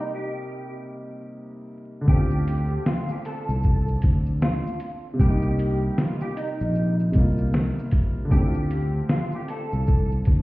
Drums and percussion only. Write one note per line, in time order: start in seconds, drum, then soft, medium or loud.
2.08 kick loud
2.08 shaker medium
2.31 shaker medium
2.48 closed hi-hat medium
2.48 shaker soft
2.86 snare medium
2.86 shaker medium
3.09 shaker soft
3.25 closed hi-hat medium
3.25 shaker soft
3.49 shaker soft
3.63 kick medium
3.63 shaker medium
3.88 shaker soft
4.02 kick medium
4.02 closed hi-hat medium
4.02 shaker soft
4.26 shaker soft
4.41 snare loud
4.41 shaker medium
4.67 shaker soft
4.80 closed hi-hat medium
4.80 shaker soft
5.20 kick loud
5.20 shaker medium
5.42 shaker medium
5.59 closed hi-hat medium
5.59 shaker soft
5.97 snare medium
5.97 shaker medium
6.21 shaker soft
6.37 closed hi-hat medium
6.37 shaker soft
6.60 shaker soft
6.75 shaker medium
6.99 shaker soft
7.13 kick medium
7.13 closed hi-hat medium
7.13 shaker soft
7.37 shaker soft
7.53 snare loud
7.53 shaker medium
7.79 shaker soft
7.91 kick medium
7.91 closed hi-hat medium
7.91 shaker soft
8.31 kick loud
8.31 shaker medium
8.54 shaker medium
8.71 closed hi-hat medium
8.71 shaker soft
9.09 snare loud
9.09 shaker medium
9.32 shaker soft
9.48 closed hi-hat medium
9.48 shaker soft
9.72 shaker soft
9.87 kick medium
9.87 shaker medium
10.11 shaker soft
10.25 kick medium
10.25 closed hi-hat medium
10.25 shaker soft